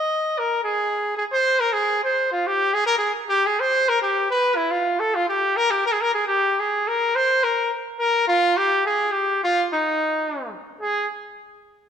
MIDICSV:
0, 0, Header, 1, 2, 480
1, 0, Start_track
1, 0, Tempo, 566038
1, 518, Time_signature, 2, 2, 24, 8
1, 10083, End_track
2, 0, Start_track
2, 0, Title_t, "Trumpet"
2, 0, Program_c, 0, 56
2, 0, Note_on_c, 0, 75, 79
2, 326, Note_on_c, 0, 70, 74
2, 339, Note_off_c, 0, 75, 0
2, 539, Note_off_c, 0, 70, 0
2, 543, Note_on_c, 0, 68, 73
2, 979, Note_off_c, 0, 68, 0
2, 994, Note_on_c, 0, 68, 76
2, 1051, Note_off_c, 0, 68, 0
2, 1125, Note_on_c, 0, 72, 95
2, 1358, Note_on_c, 0, 70, 84
2, 1371, Note_off_c, 0, 72, 0
2, 1466, Note_on_c, 0, 68, 89
2, 1479, Note_off_c, 0, 70, 0
2, 1722, Note_off_c, 0, 68, 0
2, 1729, Note_on_c, 0, 72, 86
2, 1949, Note_off_c, 0, 72, 0
2, 1968, Note_on_c, 0, 65, 76
2, 2093, Note_on_c, 0, 67, 86
2, 2106, Note_off_c, 0, 65, 0
2, 2319, Note_on_c, 0, 68, 92
2, 2332, Note_off_c, 0, 67, 0
2, 2426, Note_off_c, 0, 68, 0
2, 2431, Note_on_c, 0, 70, 92
2, 2489, Note_off_c, 0, 70, 0
2, 2530, Note_on_c, 0, 68, 75
2, 2646, Note_off_c, 0, 68, 0
2, 2792, Note_on_c, 0, 67, 91
2, 2935, Note_on_c, 0, 68, 80
2, 2948, Note_off_c, 0, 67, 0
2, 3053, Note_on_c, 0, 72, 94
2, 3065, Note_off_c, 0, 68, 0
2, 3298, Note_on_c, 0, 70, 97
2, 3311, Note_off_c, 0, 72, 0
2, 3404, Note_off_c, 0, 70, 0
2, 3409, Note_on_c, 0, 67, 81
2, 3629, Note_off_c, 0, 67, 0
2, 3650, Note_on_c, 0, 71, 86
2, 3866, Note_on_c, 0, 64, 73
2, 3879, Note_off_c, 0, 71, 0
2, 3992, Note_on_c, 0, 65, 80
2, 4004, Note_off_c, 0, 64, 0
2, 4239, Note_on_c, 0, 69, 73
2, 4251, Note_off_c, 0, 65, 0
2, 4366, Note_on_c, 0, 65, 82
2, 4379, Note_off_c, 0, 69, 0
2, 4478, Note_off_c, 0, 65, 0
2, 4484, Note_on_c, 0, 67, 78
2, 4720, Note_on_c, 0, 70, 90
2, 4733, Note_off_c, 0, 67, 0
2, 4840, Note_on_c, 0, 67, 75
2, 4853, Note_off_c, 0, 70, 0
2, 4959, Note_off_c, 0, 67, 0
2, 4968, Note_on_c, 0, 70, 92
2, 5024, Note_on_c, 0, 68, 72
2, 5037, Note_off_c, 0, 70, 0
2, 5099, Note_on_c, 0, 70, 85
2, 5111, Note_off_c, 0, 68, 0
2, 5201, Note_off_c, 0, 70, 0
2, 5207, Note_on_c, 0, 68, 76
2, 5312, Note_off_c, 0, 68, 0
2, 5320, Note_on_c, 0, 67, 83
2, 5594, Note_on_c, 0, 68, 71
2, 5606, Note_off_c, 0, 67, 0
2, 5832, Note_on_c, 0, 70, 78
2, 5845, Note_off_c, 0, 68, 0
2, 6066, Note_on_c, 0, 72, 88
2, 6079, Note_off_c, 0, 70, 0
2, 6304, Note_on_c, 0, 70, 75
2, 6317, Note_off_c, 0, 72, 0
2, 6537, Note_off_c, 0, 70, 0
2, 6779, Note_on_c, 0, 70, 86
2, 6995, Note_off_c, 0, 70, 0
2, 7020, Note_on_c, 0, 65, 95
2, 7269, Note_on_c, 0, 67, 96
2, 7282, Note_off_c, 0, 65, 0
2, 7495, Note_off_c, 0, 67, 0
2, 7513, Note_on_c, 0, 68, 86
2, 7730, Note_on_c, 0, 67, 76
2, 7743, Note_off_c, 0, 68, 0
2, 7965, Note_off_c, 0, 67, 0
2, 8001, Note_on_c, 0, 65, 87
2, 8198, Note_off_c, 0, 65, 0
2, 8247, Note_on_c, 0, 63, 84
2, 8916, Note_off_c, 0, 63, 0
2, 9162, Note_on_c, 0, 68, 84
2, 9391, Note_off_c, 0, 68, 0
2, 10083, End_track
0, 0, End_of_file